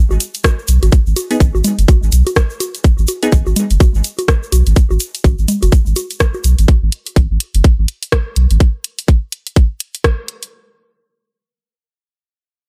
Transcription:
0.11 sub bass G#1, high conga, shaker
0.20 closed hi-hat, shaker
0.34 closed hi-hat, shaker
0.44 kick, cross-stick, closed hi-hat, high conga, shaker
0.59 shaker
0.68 sub bass B1, closed hi-hat, shaker
0.83 sub bass G#1, closed hi-hat, high conga, shaker
0.92 kick, closed hi-hat, shaker
1.06 sub bass G#1, shaker
1.16 closed hi-hat, high conga, shaker
1.31 synth stab B3 D#4 G#4, closed hi-hat, shaker
1.40 sub bass G#1, kick, closed hi-hat, shaker
1.55 sub bass G#1, high conga, shaker
1.64 closed hi-hat, low conga, shaker
1.78 sub bass F#1, closed hi-hat, shaker
1.88 kick, closed hi-hat, high conga, shaker
2.03 sub bass G#1, shaker
2.12 sub bass B1, closed hi-hat, shaker
2.27 closed hi-hat, high conga, shaker
2.36 kick, cross-stick, closed hi-hat, shaker
2.50 shaker
2.60 closed hi-hat, high conga, shaker
2.75 closed hi-hat, shaker
2.84 kick, closed hi-hat, shaker
2.98 sub bass G#1, shaker
3.07 closed hi-hat, high conga, shaker
3.23 synth stab B3 D#4 G#4, closed hi-hat, shaker
3.32 sub bass G#1, kick, closed hi-hat, shaker
3.46 sub bass G#1, high conga, shaker
3.56 closed hi-hat, low conga, shaker
3.70 sub bass F#1, closed hi-hat, shaker
3.80 kick, closed hi-hat, high conga, shaker
3.95 sub bass G#1, shaker
4.04 closed hi-hat, shaker
4.19 closed hi-hat, high conga, shaker
4.28 kick, cross-stick, closed hi-hat, shaker
4.43 shaker
4.52 sub bass B1, closed hi-hat, high conga, shaker
4.66 sub bass G#1, closed hi-hat, shaker
4.76 kick, closed hi-hat, shaker
4.91 sub bass G#1, high conga, shaker
5.00 closed hi-hat, shaker
5.15 closed hi-hat, shaker
5.24 sub bass G#1, kick, closed hi-hat, high conga, shaker
5.39 sub bass G#1, shaker
5.48 closed hi-hat, low conga, shaker
5.62 sub bass F#1, closed hi-hat, high conga, shaker
5.72 kick, closed hi-hat, shaker
5.86 sub bass G#1, shaker
5.96 closed hi-hat, high conga, shaker
6.10 closed hi-hat, shaker
6.20 kick, cross-stick, closed hi-hat, shaker
6.34 high conga, shaker
6.44 sub bass B1, closed hi-hat, shaker
6.59 sub bass G#1, closed hi-hat, shaker
6.68 kick, closed hi-hat
6.83 sub bass G#1
6.92 closed hi-hat
7.07 closed hi-hat
7.16 sub bass G#1, kick, closed hi-hat
7.31 sub bass G#1
7.40 closed hi-hat
7.55 sub bass F#1, closed hi-hat
7.64 kick, closed hi-hat
7.79 sub bass G#1
7.88 closed hi-hat
8.03 closed hi-hat
8.12 kick, cross-stick, closed hi-hat
8.36 sub bass B1, closed hi-hat
8.51 sub bass G#1, closed hi-hat
8.60 kick, closed hi-hat
8.84 closed hi-hat
8.99 closed hi-hat
9.08 kick, closed hi-hat
9.32 closed hi-hat
9.47 closed hi-hat
9.56 kick, closed hi-hat
9.80 closed hi-hat
9.95 closed hi-hat
10.04 kick, cross-stick, closed hi-hat
10.28 closed hi-hat
10.43 closed hi-hat

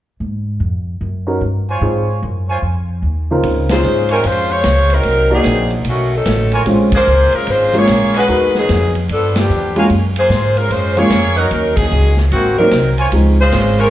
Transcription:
0.20 upright bass G#2
0.60 upright bass F2
1.01 upright bass F#2
1.27 grand piano C#4 D#4 F#4 A#4
1.41 upright bass G2
1.68 trumpet section F4 C5 C#5 G#5
1.81 upright bass G#2, grand piano C4 D#4 F4 G#4
2.23 upright bass F#2
2.48 trumpet section F4 C5 C#5 G#5
2.62 upright bass F2
3.02 upright bass D#2
3.31 grand piano C#3 C4 D#4 F4 A#4
3.43 upright bass C#2, ride
3.69 saxophone section G#3 C#4 F4 C5, grand piano D#4 F4 G#4 C5, snare, ride
3.83 upright bass G#2, hi-hat pedal
4.09 saxophone section F#3 C4 D#4 A#4, trumpet section F4 C5 C#5 G#5, ride
4.24 upright bass F2, saxophone section G#3 C#4 F4 C5, ride
4.52 saxophone section G#3 F4 C5 C#5
4.64 upright bass C#2, snare, hi-hat pedal, ride
4.90 saxophone section F#3 C4 A#4, ride
4.94 saxophone section D#4
5.03 upright bass C2, ride
5.30 grand piano A#3 D#4 F#4 D5
5.34 saxophone section F#3 C4 D#4 G#4
5.44 upright bass A#1, snare, hi-hat pedal, ride
5.70 ride
5.85 upright bass B1, ride
5.89 saxophone section D#3 A3 C#4 F#4
6.15 saxophone section F#3 C#4 D#4 A4
6.25 upright bass A1, snare, hi-hat pedal, ride
6.52 trumpet section F4 A#4 C#5 G#5, ride
6.66 upright bass A#1, grand piano G#3 C4 C#4 F4, ride
6.92 saxophone section A#3 F4 G#4 C5, muted upright bass stroke, kick, ride
7.06 upright bass C#2, hi-hat pedal
7.32 saxophone section G#3 C#4 F4 A#4, muted upright bass stroke, ride
7.47 upright bass G#1, saxophone section G#3 F4 C5, ride
7.51 saxophone section C#4
7.73 grand piano G#3 A#3 C#4 F4, ride
7.77 saxophone section A#3 F4 G#4 C#5
7.87 upright bass A#1, snare, hi-hat pedal, ride
8.14 saxophone section D#4 F#4, trumpet section F#4 B4 D#5 G#5, ride
8.18 saxophone section G#3 B4
8.28 upright bass D#2, grand piano B3 D#4 F#4 A#4, ride
8.55 saxophone section F#3 B3 D#4 G#4, snare
8.69 upright bass F2, snare, hi-hat pedal, ride
8.95 ride
9.09 upright bass G2, saxophone section F3 B3 D4 A4, ride
9.36 saxophone section F3 B3 D4 G4, snare, ride
9.49 upright bass E2, hi-hat pedal
9.76 grand piano G#3 A#3 C#4 F4, trumpet section F#4 A#4 F5 G#5, ride
9.90 upright bass F#2, ride
10.16 saxophone section A#3 F4 G#4 C5, ride
10.29 upright bass G#2, snare, hi-hat pedal
10.57 saxophone section G#3 C#4 F4 A#4, ride
10.70 upright bass F#2, saxophone section G#3 C#4 F4 C5, ride
10.97 grand piano G#3 A#3 C#4 F4, saxophone section A#3 F4 G#4 C#5, ride
11.10 upright bass F2, snare, hi-hat pedal, ride
11.36 saxophone section F#3 C#4 D#4 A#4, trumpet section D#4 A#4 C#5 F#5, ride
11.51 upright bass D#2, ride
11.76 saxophone section F#3 C#4 D#4 G#4, kick, ride
11.91 upright bass C#2, hi-hat pedal
12.17 snare
12.31 upright bass G#1, saxophone section D#3 A#3 C4 F#4, ride
12.58 saxophone section F#3 C4 D#4 A#4, grand piano F#3 A#3 C4 D#4, muted upright bass stroke
12.71 upright bass C2, snare, hi-hat pedal, ride
12.98 trumpet section F4 C5 C#5 G#5, ride
13.12 upright bass C#2, grand piano F3 G#3 C4 D#4, ride
13.41 saxophone section G#3 C#4 F4 C5
13.52 upright bass G#1, snare, hi-hat pedal, ride
13.79 saxophone section G#3 C#4 F4 A#4, trumpet section F4 C5 C#5 G#5, ride

